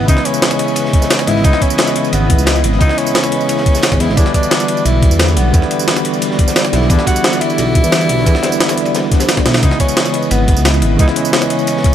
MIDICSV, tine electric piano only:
0, 0, Header, 1, 2, 480
1, 0, Start_track
1, 0, Key_signature, 4, "minor"
1, 0, Tempo, 340909
1, 117, Time_signature, 4, 2, 24, 8
1, 16824, End_track
2, 0, Start_track
2, 0, Title_t, "Tine electric piano"
2, 0, Program_c, 0, 4
2, 0, Control_c, 0, 64, 127
2, 0, Note_on_c, 0, 49, 75
2, 0, Note_on_c, 0, 52, 68
2, 0, Note_on_c, 0, 56, 68
2, 0, Note_on_c, 0, 59, 66
2, 0, Note_on_c, 0, 64, 82
2, 81, Note_off_c, 0, 49, 0
2, 81, Note_on_c, 0, 49, 99
2, 98, Note_off_c, 0, 52, 0
2, 98, Note_on_c, 0, 52, 94
2, 116, Note_off_c, 0, 56, 0
2, 116, Note_on_c, 0, 56, 89
2, 134, Note_off_c, 0, 59, 0
2, 134, Note_on_c, 0, 59, 91
2, 152, Note_off_c, 0, 64, 0
2, 152, Note_on_c, 0, 64, 111
2, 1750, Note_off_c, 0, 49, 0
2, 1759, Note_off_c, 0, 52, 0
2, 1768, Note_off_c, 0, 56, 0
2, 1777, Note_off_c, 0, 59, 0
2, 1777, Note_on_c, 0, 49, 81
2, 1785, Note_on_c, 0, 52, 74
2, 1786, Note_off_c, 0, 64, 0
2, 1794, Note_on_c, 0, 56, 75
2, 1803, Note_on_c, 0, 59, 74
2, 1814, Note_on_c, 0, 64, 91
2, 1855, Note_off_c, 0, 49, 0
2, 1859, Note_off_c, 0, 52, 0
2, 1864, Note_off_c, 0, 56, 0
2, 1868, Note_off_c, 0, 59, 0
2, 1873, Note_off_c, 0, 64, 0
2, 1999, Note_on_c, 0, 49, 94
2, 2017, Note_on_c, 0, 52, 84
2, 2035, Note_on_c, 0, 56, 89
2, 2052, Note_on_c, 0, 59, 85
2, 2070, Note_on_c, 0, 64, 105
2, 3429, Note_off_c, 0, 49, 0
2, 3438, Note_off_c, 0, 52, 0
2, 3447, Note_off_c, 0, 56, 0
2, 3455, Note_off_c, 0, 59, 0
2, 3457, Note_on_c, 0, 49, 76
2, 3465, Note_off_c, 0, 64, 0
2, 3467, Note_on_c, 0, 52, 67
2, 3475, Note_on_c, 0, 56, 69
2, 3484, Note_on_c, 0, 59, 66
2, 3494, Note_on_c, 0, 64, 81
2, 3900, Note_off_c, 0, 49, 0
2, 3917, Note_on_c, 0, 49, 99
2, 3918, Note_off_c, 0, 52, 0
2, 3927, Note_off_c, 0, 56, 0
2, 3932, Note_off_c, 0, 59, 0
2, 3935, Note_on_c, 0, 52, 93
2, 3936, Note_off_c, 0, 64, 0
2, 3954, Note_on_c, 0, 56, 91
2, 3971, Note_on_c, 0, 59, 92
2, 3989, Note_on_c, 0, 64, 113
2, 5588, Note_off_c, 0, 49, 0
2, 5597, Note_off_c, 0, 52, 0
2, 5606, Note_off_c, 0, 56, 0
2, 5615, Note_off_c, 0, 59, 0
2, 5619, Note_on_c, 0, 49, 79
2, 5624, Note_off_c, 0, 64, 0
2, 5628, Note_on_c, 0, 52, 74
2, 5635, Note_on_c, 0, 56, 74
2, 5645, Note_on_c, 0, 59, 74
2, 5655, Note_on_c, 0, 64, 87
2, 5696, Note_off_c, 0, 49, 0
2, 5700, Note_off_c, 0, 52, 0
2, 5704, Note_off_c, 0, 56, 0
2, 5709, Note_off_c, 0, 59, 0
2, 5714, Note_off_c, 0, 64, 0
2, 5843, Note_on_c, 0, 50, 93
2, 5861, Note_on_c, 0, 52, 85
2, 5880, Note_on_c, 0, 55, 83
2, 5894, Control_c, 0, 64, 0
2, 5897, Note_on_c, 0, 59, 84
2, 5914, Note_on_c, 0, 64, 99
2, 6131, Control_c, 0, 64, 127
2, 7271, Note_off_c, 0, 50, 0
2, 7280, Note_off_c, 0, 52, 0
2, 7289, Note_off_c, 0, 55, 0
2, 7298, Note_off_c, 0, 59, 0
2, 7299, Note_on_c, 0, 50, 76
2, 7307, Note_off_c, 0, 64, 0
2, 7307, Note_on_c, 0, 52, 67
2, 7317, Note_on_c, 0, 55, 66
2, 7326, Note_on_c, 0, 59, 68
2, 7335, Note_on_c, 0, 64, 82
2, 7745, Note_off_c, 0, 50, 0
2, 7762, Note_on_c, 0, 50, 100
2, 7763, Note_off_c, 0, 52, 0
2, 7768, Note_off_c, 0, 55, 0
2, 7773, Note_off_c, 0, 59, 0
2, 7777, Note_off_c, 0, 64, 0
2, 7780, Note_on_c, 0, 52, 89
2, 7798, Note_on_c, 0, 55, 93
2, 7815, Note_on_c, 0, 59, 91
2, 7832, Note_on_c, 0, 64, 109
2, 9431, Note_off_c, 0, 50, 0
2, 9440, Note_off_c, 0, 52, 0
2, 9449, Note_off_c, 0, 55, 0
2, 9457, Note_off_c, 0, 59, 0
2, 9460, Note_on_c, 0, 50, 81
2, 9466, Note_off_c, 0, 64, 0
2, 9468, Note_on_c, 0, 52, 75
2, 9478, Note_on_c, 0, 55, 74
2, 9486, Note_on_c, 0, 59, 71
2, 9495, Note_on_c, 0, 64, 88
2, 9536, Note_off_c, 0, 50, 0
2, 9540, Note_off_c, 0, 52, 0
2, 9546, Note_off_c, 0, 55, 0
2, 9549, Note_off_c, 0, 59, 0
2, 9554, Note_off_c, 0, 64, 0
2, 9683, Note_on_c, 0, 50, 92
2, 9700, Note_on_c, 0, 52, 86
2, 9719, Note_on_c, 0, 55, 86
2, 9737, Note_on_c, 0, 59, 84
2, 9753, Note_on_c, 0, 64, 104
2, 11111, Note_off_c, 0, 50, 0
2, 11120, Note_off_c, 0, 52, 0
2, 11129, Note_off_c, 0, 55, 0
2, 11138, Note_off_c, 0, 59, 0
2, 11139, Note_on_c, 0, 50, 76
2, 11146, Note_off_c, 0, 64, 0
2, 11148, Note_on_c, 0, 52, 70
2, 11157, Note_on_c, 0, 55, 70
2, 11166, Note_on_c, 0, 59, 70
2, 11175, Note_on_c, 0, 64, 86
2, 11582, Note_off_c, 0, 50, 0
2, 11598, Note_on_c, 0, 50, 104
2, 11599, Note_off_c, 0, 52, 0
2, 11608, Note_off_c, 0, 55, 0
2, 11613, Note_off_c, 0, 59, 0
2, 11616, Note_on_c, 0, 52, 93
2, 11617, Note_off_c, 0, 64, 0
2, 11633, Note_on_c, 0, 55, 90
2, 11651, Note_on_c, 0, 59, 94
2, 11669, Note_on_c, 0, 64, 110
2, 12781, Note_off_c, 0, 50, 0
2, 12798, Note_on_c, 0, 50, 76
2, 12802, Note_off_c, 0, 52, 0
2, 12811, Note_off_c, 0, 55, 0
2, 12817, Note_on_c, 0, 52, 69
2, 12820, Note_off_c, 0, 59, 0
2, 12829, Note_off_c, 0, 64, 0
2, 12834, Note_on_c, 0, 55, 67
2, 12852, Note_on_c, 0, 59, 71
2, 12870, Note_on_c, 0, 62, 85
2, 13509, Note_off_c, 0, 50, 0
2, 13518, Note_off_c, 0, 52, 0
2, 13520, Note_on_c, 0, 49, 91
2, 13527, Note_off_c, 0, 55, 0
2, 13536, Note_off_c, 0, 59, 0
2, 13538, Note_on_c, 0, 52, 85
2, 13544, Note_off_c, 0, 62, 0
2, 13555, Note_on_c, 0, 56, 86
2, 13573, Control_c, 0, 64, 0
2, 13573, Note_on_c, 0, 59, 84
2, 13592, Note_on_c, 0, 64, 102
2, 13818, Control_c, 0, 64, 127
2, 14949, Note_off_c, 0, 49, 0
2, 14959, Note_off_c, 0, 52, 0
2, 14967, Note_off_c, 0, 56, 0
2, 14976, Note_off_c, 0, 59, 0
2, 14980, Note_on_c, 0, 49, 74
2, 14985, Note_off_c, 0, 64, 0
2, 14989, Note_on_c, 0, 52, 68
2, 14998, Note_on_c, 0, 56, 69
2, 15007, Note_on_c, 0, 59, 69
2, 15016, Note_on_c, 0, 64, 82
2, 15421, Note_off_c, 0, 49, 0
2, 15438, Note_on_c, 0, 49, 101
2, 15440, Note_off_c, 0, 52, 0
2, 15449, Note_off_c, 0, 56, 0
2, 15453, Note_off_c, 0, 59, 0
2, 15457, Note_off_c, 0, 64, 0
2, 15457, Note_on_c, 0, 52, 92
2, 15475, Note_on_c, 0, 56, 92
2, 15492, Note_on_c, 0, 59, 91
2, 15510, Note_on_c, 0, 64, 110
2, 16824, Note_off_c, 0, 49, 0
2, 16824, Note_off_c, 0, 52, 0
2, 16824, Note_off_c, 0, 56, 0
2, 16824, Note_off_c, 0, 59, 0
2, 16824, Note_off_c, 0, 64, 0
2, 16824, End_track
0, 0, End_of_file